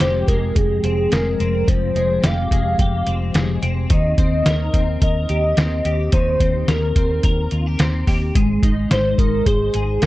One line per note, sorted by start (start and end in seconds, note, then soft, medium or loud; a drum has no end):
0.00 0.23 F1 medium
0.00 1.67 F2 medium
0.00 0.27 G#3 medium
0.00 0.84 C4 medium
0.00 1.15 G4 medium
0.00 0.29 C5 medium
0.00 snare medium
0.00 closed hi-hat medium
0.28 0.51 F1 medium
0.28 1.11 G#3 medium
0.28 0.58 A#4 medium
0.28 kick medium
0.28 closed hi-hat medium
0.56 0.79 F1 medium
0.56 1.14 G#4 loud
0.56 kick medium
0.56 closed hi-hat medium
0.83 1.06 F1 medium
0.83 1.40 C4 soft
0.83 closed hi-hat medium
1.12 1.35 F1 medium
1.12 1.95 G#3 medium
1.12 1.70 A#4 medium
1.12 snare medium
1.12 closed hi-hat medium
1.40 1.63 F1 medium
1.40 3.07 C4 medium
1.40 closed hi-hat medium
1.68 1.91 F1 medium
1.68 3.91 F2 medium
1.68 2.26 C5 loud
1.68 kick loud
1.68 closed hi-hat medium
1.95 2.18 F1 medium
1.95 2.50 G#3 medium
1.95 closed hi-hat medium
2.23 2.46 F1 medium
2.23 2.79 G4 medium
2.23 3.63 F5 loud
2.23 snare medium
2.23 closed hi-hat medium
2.51 2.74 F1 medium
2.51 3.34 G#3 soft
2.51 kick medium
2.51 closed hi-hat medium
2.79 3.02 F1 medium
2.79 4.46 G4 medium
2.79 kick medium
2.79 closed hi-hat medium
3.07 3.30 F1 medium
3.07 3.62 C4 soft
3.07 closed hi-hat medium
3.34 3.57 F1 medium
3.34 3.96 G#3 medium
3.34 snare medium
3.34 closed hi-hat medium
3.62 3.85 F1 loud
3.62 4.18 C4 medium
3.62 closed hi-hat medium
3.90 4.13 D#2 loud
3.90 6.13 D#3 medium
3.90 4.99 D#5 loud
3.90 kick loud
3.90 closed hi-hat medium
4.18 4.41 D#2 medium
4.18 4.74 C4 medium
4.18 kick medium
4.18 closed hi-hat medium
4.46 4.69 D#2 medium
4.46 5.01 A#4 medium
4.46 snare medium
4.46 closed hi-hat medium
4.74 4.97 D#2 medium
4.74 5.57 C4 medium
4.74 kick medium
4.74 closed hi-hat medium
5.02 5.25 D#2 medium
5.02 6.69 A#4 medium
5.02 6.10 D#5 loud
5.02 kick medium
5.02 closed hi-hat medium
5.29 5.52 D#2 medium
5.29 5.84 G4 medium
5.29 closed hi-hat medium
5.57 5.80 D#2 medium
5.57 6.40 C4 soft
5.57 snare medium
5.57 closed hi-hat medium
5.85 6.08 D#2 medium
5.85 7.52 G4 medium
5.85 closed hi-hat medium
6.12 6.36 D#2 medium
6.12 8.35 D#3 medium
6.12 6.70 C5 loud
6.12 kick loud
6.12 closed hi-hat medium
6.40 6.63 D#2 medium
6.40 6.96 C4 medium
6.40 kick medium
6.40 closed hi-hat medium
6.68 6.91 D#2 medium
6.68 7.80 A#4 medium
6.68 7.24 A#4 medium
6.68 snare medium
6.68 closed hi-hat medium
6.96 7.19 D#2 medium
6.96 7.80 C4 soft
6.96 kick medium
6.96 closed hi-hat medium
7.23 7.47 D#2 medium
7.23 8.91 A#4 medium
7.23 kick medium
7.23 closed hi-hat medium
7.51 7.75 D#2 medium
7.51 7.66 F4 soft
7.51 closed hi-hat medium
7.66 8.07 G4 soft
7.79 8.03 D#2 medium
7.79 8.63 C4 soft
7.79 snare medium
7.79 closed hi-hat medium
8.07 8.30 D#2 medium
8.07 8.41 G4 medium
8.07 kick medium
8.07 open hi-hat medium
8.35 8.58 G#1 medium
8.35 10.06 G#3 medium
8.35 kick medium
8.35 closed hi-hat medium
8.63 8.86 G#1 medium
8.63 9.19 D#4 medium
8.63 kick medium
8.63 closed hi-hat medium
8.91 9.14 G#1 medium
8.91 9.47 C5 medium
8.91 9.17 C5 medium
8.91 snare medium
8.91 closed hi-hat medium
9.18 9.41 G#1 medium
9.18 10.02 D#4 soft
9.18 9.48 A#4 medium
9.18 kick medium
9.18 closed hi-hat medium
9.46 9.69 G#1 medium
9.46 10.04 G#4 medium
9.46 10.06 C5 medium
9.46 kick medium
9.46 closed hi-hat medium
9.74 9.97 G#1 medium
9.74 10.06 G#4 medium
9.74 closed hi-hat medium
10.02 10.06 G#1 medium
10.02 10.06 D#4 medium
10.02 10.06 A#4 medium
10.02 snare medium
10.02 closed hi-hat medium